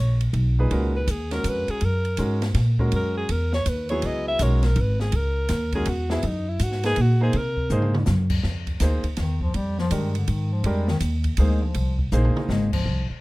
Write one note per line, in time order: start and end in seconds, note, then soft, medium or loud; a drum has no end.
0.00 0.33 A#1 medium
0.00 0.22 C#5 medium
0.21 ride soft
0.33 0.69 B1 medium
0.33 ride medium
0.59 1.06 A#2 medium
0.59 1.06 D#4 medium
0.59 1.06 G#4 medium
0.59 1.06 B4 medium
0.71 1.07 C#2 medium
0.71 0.92 G#3 medium
0.71 0.92 C#4 medium
0.71 0.93 F#4 medium
0.71 0.93 A#4 medium
0.71 ride medium
0.96 1.12 B4 medium
1.07 1.43 D#2 medium
1.07 1.33 G#4 medium
1.07 hi-hat pedal medium
1.07 ride medium
1.31 1.79 G#3 medium
1.31 1.79 C#4 medium
1.31 1.79 F#4 medium
1.31 1.79 A#4 medium
1.31 1.50 A#4 medium
1.31 snare soft
1.31 ride soft
1.44 1.66 F2 medium
1.44 hi-hat pedal medium
1.44 ride medium
1.49 1.72 B4 medium
1.68 1.86 G#4 medium
1.68 muted upright bass stroke soft
1.68 ride soft
1.81 2.17 F#2 medium
1.81 ride medium
1.85 2.20 A#4 loud
2.05 ride soft
2.17 2.54 G#2 medium
2.17 2.40 G#3 medium
2.17 2.40 C#4 medium
2.17 2.40 F#4 medium
2.17 2.40 A#4 medium
2.17 hi-hat pedal medium
2.17 ride medium
2.42 snare medium
2.42 ride soft
2.54 2.91 A#2 medium
2.54 snare soft
2.54 ride medium
2.79 3.26 G#3 medium
2.79 3.26 C#4 medium
2.79 3.27 F#4 medium
2.79 3.27 A#4 medium
2.79 kick medium
2.92 3.28 F#2 medium
2.92 3.16 A#4 medium
2.92 ride medium
3.17 3.33 G#4 medium
3.29 3.65 E2 medium
3.29 3.54 A#4 medium
3.29 ride medium
3.53 3.71 C#5 loud
3.53 snare medium
3.66 4.01 D#2 medium
3.66 3.89 B4 medium
3.66 hi-hat pedal medium
3.66 ride medium
3.89 4.37 F#3 medium
3.89 4.37 B3 medium
3.89 4.37 E4 medium
3.89 4.38 G#4 medium
3.89 4.07 C#5 loud
3.89 ride soft
4.02 4.38 C#2 medium
4.02 4.28 D#5 loud
4.02 ride medium
4.28 4.44 E5 loud
4.39 4.75 B1 medium
4.39 4.61 G#3 medium
4.39 4.61 C#4 medium
4.39 4.61 F#4 medium
4.39 4.62 A#4 medium
4.39 4.67 C#5 medium
4.39 hi-hat pedal medium
4.39 ride medium
4.63 4.82 A#4 medium
4.63 snare soft
4.63 ride soft
4.76 5.12 G#1 loud
4.76 ride medium
4.81 5.01 B4 loud
5.00 5.17 G#4 medium
5.00 snare soft
5.12 5.48 C#2 medium
5.12 5.75 A#4 loud
5.12 ride medium
5.49 5.85 D#2 loud
5.49 snare soft
5.49 hi-hat pedal medium
5.49 ride medium
5.72 5.86 G#3 medium
5.72 5.86 C#4 medium
5.72 5.86 F#4 medium
5.72 5.91 G#4 medium
5.72 5.86 A#4 medium
5.72 kick medium
5.72 ride soft
5.86 6.22 E2 loud
5.86 ride medium
5.90 6.11 F#4 medium
6.10 6.22 F#3 medium
6.10 6.22 B3 medium
6.10 6.28 E4 loud
6.10 6.23 E4 medium
6.10 6.23 G#4 medium
6.10 snare medium
6.23 6.59 F#2 medium
6.23 ride medium
6.27 6.50 D#4 medium
6.49 6.64 E4 medium
6.59 6.96 G#2 medium
6.59 6.85 F#4 medium
6.59 hi-hat pedal medium
6.59 ride medium
6.72 snare soft
6.83 6.96 A#3 medium
6.83 6.96 D#4 medium
6.83 6.96 G#4 medium
6.83 7.03 G#4 loud
6.83 6.96 B4 medium
6.83 snare soft
6.83 ride medium
6.96 7.33 A#2 medium
6.96 ride medium
7.01 7.22 F#4 medium
7.21 7.32 A#3 medium
7.21 7.33 D#4 medium
7.21 7.33 G#4 medium
7.21 7.39 G#4 loud
7.21 7.33 C5 medium
7.33 7.69 C3 medium
7.33 ride medium
7.37 7.72 A#4 loud
7.57 kick medium
7.70 8.06 G#2 medium
7.70 7.92 A#3 medium
7.70 7.93 D#4 medium
7.70 7.93 G#4 medium
7.70 7.93 C5 medium
7.70 hi-hat pedal medium
7.70 mid tom medium
7.82 mid tom medium
7.94 mid tom loud
8.06 8.43 F#2 loud
8.06 snare medium
8.06 hi-hat pedal medium
8.30 kick medium
8.30 crash medium
8.43 8.79 F2 medium
8.43 snare soft
8.67 kick medium
8.67 ride soft
8.80 9.03 D2 medium
8.80 9.02 A#3 medium
8.80 9.03 D#4 medium
8.80 9.03 G#4 medium
8.80 9.03 C5 medium
8.80 snare soft
8.80 hi-hat pedal medium
8.80 ride medium
9.04 muted upright bass stroke soft
9.04 kick medium
9.04 ride soft
9.17 9.53 E2 medium
9.17 9.40 D#3 medium
9.17 snare soft
9.17 ride medium
9.41 9.57 F3 medium
9.41 kick medium
9.54 9.90 F2 medium
9.54 9.79 G3 loud
9.54 ride medium
9.79 9.95 F3 loud
9.79 snare soft
9.91 10.27 G2 medium
9.91 10.16 D#3 medium
9.91 10.13 G#3 medium
9.91 10.13 D4 medium
9.91 10.13 G4 medium
9.91 10.13 A#4 medium
9.91 hi-hat pedal medium
9.91 ride medium
10.15 10.31 D3 medium
10.15 ride medium
10.28 10.63 G#2 medium
10.28 10.54 D#3 medium
10.28 ride medium
10.53 10.69 F3 medium
10.64 11.00 F2 medium
10.64 10.89 G3 loud
10.64 10.87 G#3 medium
10.64 10.87 D4 medium
10.64 10.87 G4 medium
10.64 10.87 A#4 medium
10.64 ride medium
10.88 10.97 D#3 medium
10.88 snare medium
11.00 11.37 D#2 medium
11.00 hi-hat pedal medium
11.00 ride medium
11.24 kick soft
11.24 ride medium
11.37 11.74 D2 loud
11.37 11.64 G#3 medium
11.37 11.60 A#3 medium
11.37 11.60 D#4 medium
11.37 11.61 G#4 medium
11.37 11.61 C5 medium
11.37 ride medium
11.63 11.99 F3 medium
11.74 12.11 C2 medium
11.74 ride medium
11.99 kick medium
12.12 12.34 A#1 medium
12.12 12.68 A#3 medium
12.12 12.68 D#4 medium
12.12 12.69 G#4 medium
12.12 12.69 C5 medium
12.12 hi-hat pedal medium
12.12 mid tom medium
12.25 mid tom medium
12.35 muted upright bass stroke soft
12.35 mid tom loud
12.49 12.84 G#1 medium
12.49 12.72 G#3 loud
12.49 snare medium
12.73 13.07 F3 medium
12.73 kick medium
12.73 crash medium
12.86 13.08 C2 medium
13.10 muted upright bass stroke soft